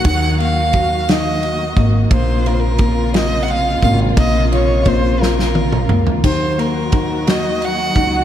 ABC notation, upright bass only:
X:1
M:6/8
L:1/8
Q:3/8=58
K:Bbm
V:1 name="Upright bass" clef=bass
E,,4- E,, A,,, | B,,,4- B,,, A,,, | B,,,4- B,,, D,, | E,,4- E,, D,, |]